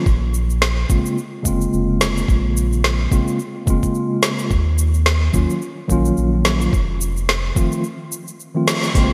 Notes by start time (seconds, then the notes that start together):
0.06 A#1, kick, shaker
0.34 shaker
0.50 shaker
0.62 snare, shaker
0.89 A#1 C#3 G#3 A#3 C4 F4, kick, shaker
1.06 shaker
1.18 shaker
1.43 F1 C#3 G#3 A#3 C4, kick, shaker
1.47 F4
1.61 shaker
1.73 F1, shaker
2.01 snare, shaker
2.17 shaker
2.28 A#1, kick, shaker
2.57 shaker
2.73 shaker
2.84 snare, shaker
3.11 A#1 C#3 G#3 A#3 C4 F4, kick, shaker
3.28 shaker
3.39 shaker
3.66 F1 C#3 G#3 A#3 C4, kick, shaker
3.70 F4
3.83 kick, shaker
3.95 shaker
4.23 snare, shaker
4.39 shaker
4.51 D#2, kick, shaker
4.78 shaker
4.94 shaker
5.06 snare, shaker
5.33 D#2 D#3 F#3 A#3 C#4 F4, kick, shaker
5.50 shaker
5.62 shaker
5.88 A#1 D#3 F#3 A#3 C#4, kick, shaker
5.92 F4
6.05 shaker
6.17 A#1, shaker
6.45 snare, shaker
6.61 shaker
6.73 F1, kick, shaker
7.01 shaker
7.17 shaker
7.29 snare, shaker
7.55 F1 D#3 F3 A3 C4 F4, kick, shaker
7.72 shaker
7.84 shaker
8.12 shaker
8.28 shaker
8.40 shaker
8.55 D#3 F3 A3 C4 F4
8.68 snare, shaker
8.83 shaker
8.93 A#1 C#3 G#3 A#3 C4, kick, open hi-hat, shaker
8.97 F4